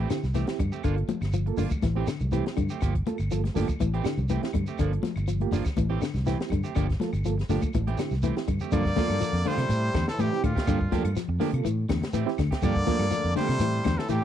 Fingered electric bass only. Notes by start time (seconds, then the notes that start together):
0.24 C2
0.60 G2
0.85 G1
1.22 G1
1.58 G1
1.83 A1
2.21 C2
2.58 G2
2.83 G1
3.19 G1
3.56 G1
3.81 A1
4.18 C2
4.55 G2
4.79 G1
5.16 G1
5.53 G1
5.78 A1
6.14 C2
6.52 G2
6.77 G1
7.13 G1
7.50 G1
7.63 muted fingered electric bass stroke
7.75 A1
8.11 C2
8.48 G2
8.73 G2
9.10 G2
9.33 F2
9.45 muted fingered electric bass stroke
9.57 C3
9.69 A2
9.95 E2
10.19 A2
10.44 A2
10.68 G2
11.04 G2
11.28 F2
11.41 muted fingered electric bass stroke
11.53 C3
11.65 A2
11.90 E2
12.14 A2
12.39 D2
12.63 G2
12.99 G2
13.24 F2
13.37 muted fingered electric bass stroke
13.49 C3
13.60 A2
13.85 E2
14.09 A2